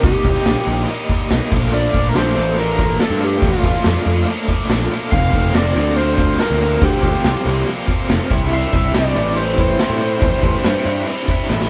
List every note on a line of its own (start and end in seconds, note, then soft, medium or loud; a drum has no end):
0.03 0.12 C2 loud
0.03 0.23 D#3 loud
0.03 0.24 G3 loud
0.03 0.24 A#3 loud
0.03 0.23 D#4 loud
0.03 0.24 G4 loud
0.03 0.85 G4 medium
0.03 kick loud
0.03 crash medium
0.24 0.33 C2 loud
0.24 0.44 D#3 medium
0.24 0.45 G3 medium
0.24 0.45 A#3 medium
0.24 0.45 D#4 medium
0.24 0.45 G4 medium
0.24 kick medium
0.24 crash medium
0.36 snare soft
0.45 0.54 A#1 loud
0.45 0.65 D#3 medium
0.45 0.67 G3 medium
0.45 0.66 A#3 loud
0.45 0.66 D#4 medium
0.45 0.66 G4 loud
0.45 snare loud
0.45 clap loud
0.45 crash medium
0.66 0.84 A#1 loud
0.66 0.86 D#3 medium
0.66 0.88 G3 medium
0.66 0.87 A#3 medium
0.66 0.86 D#4 medium
0.66 0.87 G4 medium
0.66 crash medium
0.87 1.08 D#3 loud
0.87 1.09 G3 loud
0.87 1.09 A#3 loud
0.87 1.09 D#4 loud
0.87 1.08 G4 loud
0.87 crash medium
1.09 1.29 D#3 medium
1.09 1.29 G3 medium
1.09 1.30 A#3 medium
1.09 1.30 D#4 medium
1.09 1.30 G4 medium
1.09 kick medium
1.09 crash medium
1.30 1.39 B1 medium
1.30 1.50 D#3 loud
1.30 1.51 G3 loud
1.30 1.51 A#3 loud
1.30 1.51 D#4 medium
1.30 1.51 G4 medium
1.30 snare loud
1.30 clap loud
1.30 crash medium
1.41 snare soft
1.51 1.86 A#1 loud
1.51 1.71 A#2 medium
1.51 1.71 F3 loud
1.51 1.72 A3 loud
1.51 1.74 A#3 loud
1.51 1.72 D4 loud
1.51 1.72 F4 loud
1.51 kick loud
1.51 crash medium
1.71 1.92 A#2 medium
1.71 1.92 F3 loud
1.71 1.93 A3 loud
1.71 1.94 A#3 medium
1.71 1.93 D4 loud
1.71 1.93 F4 loud
1.71 2.10 D5 loud
1.71 crash medium
1.92 2.11 A#1 medium
1.92 2.13 A#2 medium
1.92 2.14 F3 medium
1.92 2.14 A3 medium
1.92 2.15 A#3 medium
1.92 2.14 D4 medium
1.92 2.15 F4 medium
1.92 kick medium
1.92 crash medium
2.09 2.17 A#4 medium
2.14 2.32 A#1 loud
2.14 2.34 A#2 loud
2.14 2.35 F3 medium
2.14 2.35 A3 loud
2.14 2.37 A#3 loud
2.14 2.35 D4 loud
2.14 2.36 F4 loud
2.14 2.58 C5 loud
2.14 snare loud
2.14 clap loud
2.14 crash medium
2.35 2.96 A1 loud
2.35 2.55 A#2 medium
2.35 2.56 F3 medium
2.35 2.56 A3 loud
2.35 2.57 A#3 loud
2.35 2.56 D4 medium
2.35 2.57 F4 medium
2.35 crash medium
2.56 2.77 A#2 loud
2.56 2.78 F3 loud
2.56 2.78 A3 loud
2.56 2.79 A#3 loud
2.56 2.78 D4 loud
2.56 2.79 F4 loud
2.56 2.98 A#4 loud
2.56 crash medium
2.78 2.98 A#2 medium
2.78 3.00 F3 medium
2.78 2.99 A3 medium
2.78 3.00 A#3 medium
2.78 2.99 D4 medium
2.78 3.01 F4 medium
2.78 kick medium
2.78 crash medium
2.99 3.20 A#2 medium
2.99 3.21 F3 loud
2.99 3.20 A3 medium
2.99 3.22 A#3 medium
2.99 3.20 D4 medium
2.99 3.22 F4 loud
2.99 3.25 A4 loud
2.99 snare loud
2.99 clap medium
2.99 crash medium
3.10 3.36 G2 medium
3.10 snare soft
3.21 3.41 A#2 medium
3.21 3.42 F3 loud
3.21 3.41 A3 loud
3.21 3.42 A#3 loud
3.21 3.42 D4 loud
3.21 3.43 F4 loud
3.21 3.46 G4 medium
3.21 crash medium
3.42 3.51 A1 loud
3.42 3.62 A#2 loud
3.42 3.63 F3 loud
3.42 3.63 A3 loud
3.42 3.64 A#3 loud
3.42 3.63 D4 loud
3.42 3.64 F4 loud
3.42 4.29 F4 medium
3.42 kick loud
3.42 crash medium
3.63 3.72 A1 loud
3.63 3.83 A#2 medium
3.63 3.84 F3 medium
3.63 3.84 A3 medium
3.63 3.85 A#3 medium
3.63 3.85 D4 medium
3.63 3.85 F4 medium
3.63 kick medium
3.63 crash medium
3.74 snare soft
3.84 3.94 F2 loud
3.84 4.04 A#2 medium
3.84 4.05 F3 loud
3.84 4.05 A3 loud
3.84 4.06 A#3 loud
3.84 4.05 D4 loud
3.84 4.06 F4 loud
3.84 snare loud
3.84 clap medium
3.84 crash medium
4.05 4.23 F2 loud
4.05 4.25 A#2 medium
4.05 4.26 F3 medium
4.05 4.26 A3 medium
4.05 4.27 A#3 medium
4.05 4.26 D4 medium
4.05 4.27 F4 medium
4.05 crash medium
4.26 4.47 A#2 loud
4.26 4.49 F3 loud
4.26 4.48 A3 loud
4.26 4.48 A#3 loud
4.26 4.48 D4 loud
4.26 4.50 F4 loud
4.26 crash medium
4.48 4.68 A#2 medium
4.48 4.69 F3 medium
4.48 4.69 A3 medium
4.48 4.70 A#3 medium
4.48 4.69 D4 medium
4.48 4.70 F4 medium
4.48 kick medium
4.48 clap medium
4.48 crash medium
4.69 4.87 A#1 medium
4.69 4.90 A#2 medium
4.69 4.91 F3 medium
4.69 4.91 A3 medium
4.69 4.91 A#3 loud
4.69 4.91 D4 loud
4.69 4.92 F4 loud
4.69 snare loud
4.69 clap medium
4.69 crash medium
4.80 snare soft
4.91 5.11 A#2 medium
4.91 5.12 F3 medium
4.91 5.11 A3 medium
4.91 5.12 A#3 medium
4.91 5.12 D4 medium
4.91 5.14 F4 loud
4.91 crash medium
5.11 5.29 F1 loud
5.11 5.33 F2 loud
5.11 5.32 C3 loud
5.11 5.33 F3 loud
5.11 5.33 A#3 loud
5.11 5.34 C4 loud
5.11 5.34 F4 loud
5.11 5.57 F5 loud
5.11 5.51 C7 medium
5.11 kick loud
5.11 crash medium
5.33 5.50 F1 medium
5.33 5.53 F2 medium
5.33 5.53 C3 medium
5.33 5.54 F3 medium
5.33 5.55 A#3 medium
5.33 5.55 C4 medium
5.33 5.55 F4 medium
5.33 kick medium
5.33 crash medium
5.54 5.72 F1 loud
5.54 5.75 F2 loud
5.54 5.75 C3 loud
5.54 5.75 F3 loud
5.54 5.75 A#3 loud
5.54 5.76 C4 loud
5.54 5.76 F4 loud
5.54 5.97 D5 loud
5.54 5.97 A#6 medium
5.54 snare loud
5.54 clap loud
5.54 crash medium
5.76 6.35 D2 loud
5.76 5.96 F2 medium
5.76 5.96 C3 medium
5.76 5.96 F3 medium
5.76 5.96 A#3 medium
5.76 5.98 C4 medium
5.76 5.97 F4 medium
5.76 crash medium
5.96 6.17 F2 medium
5.96 6.17 C3 loud
5.96 6.18 F3 loud
5.96 6.18 A#3 loud
5.96 6.19 C4 loud
5.96 6.18 F4 loud
5.96 6.39 C5 loud
5.96 6.39 F6 medium
5.96 crash medium
6.18 6.38 F2 medium
6.18 6.39 C3 medium
6.18 6.39 F3 medium
6.18 6.39 A#3 medium
6.18 6.40 C4 medium
6.18 6.40 F4 medium
6.18 kick medium
6.18 crash medium
6.39 6.59 F2 medium
6.39 6.59 C3 medium
6.39 6.60 F3 loud
6.39 6.60 A#3 loud
6.39 6.61 C4 medium
6.39 6.61 F4 loud
6.39 6.85 A#4 loud
6.39 6.80 F6 medium
6.39 snare loud
6.39 clap medium
6.39 crash medium
6.51 6.76 D2 medium
6.60 6.80 F2 medium
6.60 6.81 C3 medium
6.60 6.81 F3 medium
6.60 6.81 A#3 loud
6.60 6.83 C4 medium
6.60 6.82 F4 loud
6.60 crash medium
6.81 6.90 D2 loud
6.81 7.01 F2 loud
6.81 7.02 C3 loud
6.81 7.02 F3 loud
6.81 7.03 A#3 loud
6.81 7.04 C4 loud
6.81 7.03 F4 loud
6.81 7.68 G4 medium
6.81 7.67 C6 medium
6.81 kick loud
6.81 crash medium
7.03 7.12 D2 loud
7.03 7.23 F2 medium
7.03 7.23 C3 medium
7.03 7.24 F3 medium
7.03 7.24 A#3 medium
7.03 7.25 C4 medium
7.03 7.25 F4 medium
7.03 kick medium
7.03 crash medium
7.14 snare soft
7.24 7.33 C2 loud
7.24 7.44 F2 medium
7.24 7.44 C3 medium
7.24 7.45 F3 loud
7.24 7.45 A#3 loud
7.24 7.46 C4 loud
7.24 7.45 F4 loud
7.24 snare loud
7.24 clap loud
7.24 crash medium
7.45 7.63 C2 loud
7.45 7.66 F2 medium
7.45 7.66 C3 medium
7.45 7.66 F3 medium
7.45 7.66 A#3 medium
7.45 7.68 C4 medium
7.45 7.67 F4 loud
7.45 crash medium
7.67 7.86 F2 loud
7.67 7.86 C3 loud
7.67 7.87 F3 loud
7.67 7.87 A#3 loud
7.67 7.88 C4 loud
7.67 7.87 F4 loud
7.67 crash medium
7.87 8.07 F2 medium
7.87 8.08 C3 medium
7.87 8.08 F3 medium
7.87 8.08 A#3 medium
7.87 8.09 C4 medium
7.87 8.09 F4 loud
7.87 kick medium
7.87 crash medium
8.08 8.18 F1 medium
8.08 8.29 F2 medium
8.08 8.28 C3 medium
8.08 8.29 F3 loud
8.08 8.29 A#3 loud
8.08 8.30 C4 loud
8.08 8.30 F4 loud
8.08 snare loud
8.08 clap medium
8.08 crash medium
8.30 8.65 C2 medium
8.30 8.51 C3 loud
8.30 8.52 E3 medium
8.30 8.52 G3 loud
8.30 8.52 C4 loud
8.30 8.52 D4 loud
8.30 8.52 E4 loud
8.30 kick loud
8.30 crash medium
8.51 8.72 C3 loud
8.51 8.73 E3 medium
8.51 8.73 G3 loud
8.51 8.74 C4 loud
8.51 8.73 D4 loud
8.51 8.74 E4 loud
8.51 8.96 E5 loud
8.51 8.92 C7 medium
8.51 crash medium
8.73 8.90 C2 loud
8.73 8.94 C3 medium
8.73 8.94 E3 medium
8.73 8.94 G3 medium
8.73 8.94 C4 medium
8.73 8.94 D4 medium
8.73 8.95 E4 loud
8.73 kick medium
8.73 crash medium
8.94 9.11 C2 loud
8.94 9.15 C3 loud
8.94 9.15 E3 loud
8.94 9.16 G3 loud
8.94 9.15 C4 loud
8.94 9.16 D4 loud
8.94 9.16 E4 loud
8.94 9.37 D5 loud
8.94 9.36 G6 medium
8.94 snare loud
8.94 clap medium
8.94 crash medium
9.15 9.75 A1 loud
9.15 9.35 C3 medium
9.15 9.35 E3 medium
9.15 9.36 G3 medium
9.15 9.35 C4 loud
9.15 9.37 D4 medium
9.15 9.36 E4 medium
9.15 crash medium
9.36 9.56 C3 loud
9.36 9.57 E3 loud
9.36 9.58 G3 loud
9.36 9.57 C4 loud
9.36 9.58 D4 loud
9.36 9.58 E4 loud
9.36 11.49 C5 loud
9.36 11.50 G6 medium
9.36 crash medium
9.57 9.78 C3 medium
9.57 9.78 E3 medium
9.57 9.79 G3 medium
9.57 9.79 C4 medium
9.57 9.80 D4 medium
9.57 9.79 E4 medium
9.57 kick medium
9.57 crash medium
9.79 9.99 C3 medium
9.79 10.00 E3 medium
9.79 10.01 G3 medium
9.79 10.00 C4 loud
9.79 10.01 D4 loud
9.79 10.00 E4 loud
9.79 snare loud
9.79 clap medium
9.79 crash medium
9.90 10.15 A2 medium
9.90 snare soft
10.00 10.21 C3 medium
10.00 10.21 E3 medium
10.00 10.22 G3 loud
10.00 10.20 C4 medium
10.00 10.22 D4 loud
10.00 10.22 E4 loud
10.00 crash medium
10.21 10.30 A1 loud
10.21 10.42 C3 medium
10.21 10.42 E3 loud
10.21 10.42 G3 loud
10.21 10.42 C4 loud
10.21 10.43 D4 loud
10.21 10.43 E4 loud
10.21 kick loud
10.21 crash medium
10.43 10.52 A1 loud
10.43 10.62 C3 medium
10.43 10.63 E3 medium
10.43 10.63 G3 medium
10.43 10.64 C4 medium
10.43 10.64 D4 medium
10.43 10.64 E4 medium
10.43 kick medium
10.43 crash medium
10.54 snare soft
10.64 10.73 G2 loud
10.64 10.84 C3 medium
10.64 10.85 E3 loud
10.64 10.85 G3 loud
10.64 10.84 C4 loud
10.64 10.85 D4 loud
10.64 10.86 E4 loud
10.64 snare loud
10.64 clap loud
10.64 crash medium
10.85 11.03 G2 loud
10.85 11.05 C3 medium
10.85 11.06 E3 medium
10.85 11.06 G3 medium
10.85 11.06 C4 loud
10.85 11.06 D4 medium
10.85 11.07 E4 medium
10.85 crash medium
11.07 11.27 C3 loud
11.07 11.27 E3 loud
11.07 11.28 G3 loud
11.07 11.27 C4 loud
11.07 11.28 D4 loud
11.07 11.28 E4 loud
11.07 crash medium
11.28 11.47 C3 medium
11.28 11.48 E3 medium
11.28 11.48 G3 medium
11.28 11.49 C4 medium
11.28 11.48 D4 medium
11.28 11.49 E4 medium
11.28 kick medium
11.28 clap medium
11.28 crash medium
11.49 11.67 A1 medium
11.49 11.69 C3 medium
11.49 11.69 E3 medium
11.49 11.69 G3 medium
11.49 11.70 C4 loud
11.49 11.70 D4 medium
11.49 11.70 E4 loud
11.49 snare medium
11.49 clap loud
11.61 snare medium